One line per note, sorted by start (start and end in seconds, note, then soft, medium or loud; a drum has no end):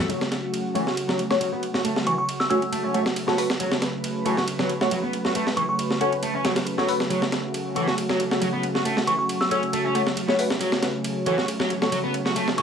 0.09 12.62 C#3 medium
0.09 0.20 F#3 medium
0.09 12.62 F#3 medium
0.09 12.62 A3 medium
0.09 3.59 F#4 medium
0.09 ride medium
0.21 snare medium
0.32 snare soft
0.32 ride medium
0.54 ride medium
0.75 0.85 E3 medium
0.75 0.84 A3 medium
0.75 0.84 F#4 medium
0.75 0.84 C#5 medium
0.75 ride medium
0.87 0.92 F#4 medium
0.87 snare soft
0.97 ride medium
1.08 1.18 F#3 medium
1.08 snare soft
1.19 ride medium
1.30 1.38 A3 medium
1.30 1.38 F#4 medium
1.30 1.38 C#5 medium
1.30 snare soft
1.41 1.47 F#3 medium
1.41 ride medium
1.52 1.62 B3 medium
1.63 ride medium
1.74 1.80 F#4 medium
1.74 snare soft
1.85 1.95 A3 medium
1.85 ride medium
1.96 snare soft
2.06 2.13 E3 medium
2.06 2.14 C#6 medium
2.06 ride medium
2.18 2.25 C#6 medium
2.29 ride medium
2.40 2.47 E6 medium
2.40 snare soft
2.50 2.59 A3 medium
2.50 2.60 C#4 medium
2.50 2.59 F#4 medium
2.50 2.59 C#5 loud
2.50 2.57 E6 medium
2.50 ride medium
2.62 ride soft
2.72 2.82 A3 medium
2.72 ride medium
2.84 2.94 C#4 medium
2.94 3.03 A3 medium
2.94 3.00 A3 medium
2.94 3.03 F#4 medium
2.94 3.03 C#5 medium
2.94 ride medium
3.06 snare soft
3.16 ride medium
3.28 3.35 A3 medium
3.28 3.33 B3 medium
3.28 3.35 F#4 medium
3.28 3.35 C#5 loud
3.28 snare soft
3.38 3.47 A3 medium
3.38 3.47 F#4 medium
3.38 3.47 B4 loud
3.38 open hi-hat medium
3.50 snare medium
3.60 3.70 F#3 medium
3.60 7.09 B4 medium
3.60 ride medium
3.72 snare medium
3.82 snare soft
3.82 ride medium
4.04 ride medium
4.25 4.36 E3 medium
4.25 4.34 A3 medium
4.25 4.34 F#4 medium
4.25 4.34 C#5 medium
4.25 ride medium
4.37 4.43 F#4 medium
4.37 snare soft
4.48 ride medium
4.59 4.68 F#3 medium
4.59 snare soft
4.69 ride medium
4.81 4.89 A3 medium
4.81 4.89 F#4 medium
4.81 4.89 C#5 loud
4.81 snare soft
4.91 4.97 F#3 medium
4.91 ride medium
5.03 5.13 B3 medium
5.13 ride medium
5.25 5.30 F#4 medium
5.25 snare soft
5.35 5.45 A3 medium
5.35 ride medium
5.47 snare soft
5.57 5.63 E3 medium
5.57 5.64 C#6 medium
5.57 ride medium
5.69 5.75 C#6 medium
5.79 ride medium
5.91 snare soft
6.01 6.09 A3 medium
6.01 6.11 C#4 medium
6.01 6.09 F#4 medium
6.01 6.09 C#5 loud
6.01 ride medium
6.13 ride soft
6.23 6.33 A3 medium
6.23 ride medium
6.34 6.44 C#4 medium
6.44 6.55 F#3 medium
6.44 6.53 A3 medium
6.44 6.53 F#4 medium
6.44 6.53 C#5 medium
6.44 snare loud
6.44 ride medium
6.56 snare loud
6.56 ride medium
6.67 ride medium
6.78 6.88 F#3 medium
6.78 6.86 A3 medium
6.78 6.86 F#4 medium
6.78 6.86 C#5 loud
6.78 snare soft
6.88 6.97 A3 medium
6.88 6.97 F#4 medium
6.88 6.97 B4 loud
6.88 open hi-hat medium
7.00 snare medium
7.10 7.20 F#3 medium
7.10 10.59 F#4 medium
7.10 ride medium
7.22 snare medium
7.32 snare soft
7.32 ride medium
7.54 ride medium
7.76 7.86 E3 medium
7.76 7.85 A3 medium
7.76 7.85 F#4 medium
7.76 7.85 C#5 medium
7.76 ride medium
7.88 7.93 F#4 medium
7.88 snare soft
7.98 ride medium
8.09 8.19 F#3 medium
8.09 snare soft
8.20 ride medium
8.31 8.39 A3 medium
8.31 8.39 F#4 medium
8.31 8.39 C#5 loud
8.31 snare soft
8.42 8.48 F#3 medium
8.42 ride medium
8.53 8.63 B3 medium
8.63 ride medium
8.75 8.81 F#4 medium
8.75 snare soft
8.85 8.96 A3 medium
8.85 ride medium
8.97 snare soft
9.07 9.13 E3 medium
9.07 9.15 C#6 medium
9.07 ride medium
9.19 9.25 C#6 medium
9.29 ride medium
9.41 9.47 E6 medium
9.41 snare soft
9.51 9.60 A3 medium
9.51 9.61 C#4 medium
9.51 9.60 F#4 medium
9.51 9.60 C#5 loud
9.51 9.59 E6 medium
9.51 ride medium
9.63 ride soft
9.73 9.83 A3 medium
9.73 ride medium
9.85 9.94 C#4 medium
9.95 10.04 A3 medium
9.95 10.01 A3 medium
9.95 10.04 F#4 medium
9.95 10.04 C#5 medium
9.95 ride medium
10.07 snare soft
10.17 ride medium
10.28 10.36 A3 medium
10.28 10.34 B3 medium
10.28 10.36 F#4 medium
10.28 10.36 C#5 loud
10.28 snare soft
10.39 10.47 A3 loud
10.39 10.47 F#4 medium
10.39 10.47 B4 loud
10.39 open hi-hat medium
10.50 snare medium
10.61 10.71 F#3 medium
10.61 12.62 C#4 medium
10.61 ride medium
10.72 snare medium
10.83 snare soft
10.83 ride medium
11.04 ride medium
11.26 11.36 E3 medium
11.26 11.35 A3 medium
11.26 11.35 F#4 medium
11.26 11.35 C#5 medium
11.26 ride medium
11.38 11.43 F#4 medium
11.38 snare soft
11.48 ride medium
11.60 11.69 F#3 medium
11.60 snare soft
11.70 ride medium
11.82 11.89 A3 medium
11.82 11.89 F#4 medium
11.82 11.89 C#5 medium
11.82 snare soft
11.92 11.98 F#3 medium
11.92 ride medium
12.04 12.13 B3 medium
12.14 ride medium
12.25 12.31 F#4 medium
12.25 snare soft
12.36 12.46 A3 medium
12.36 ride medium
12.48 snare soft
12.57 12.62 E3 medium
12.57 12.62 C#6 medium
12.57 ride medium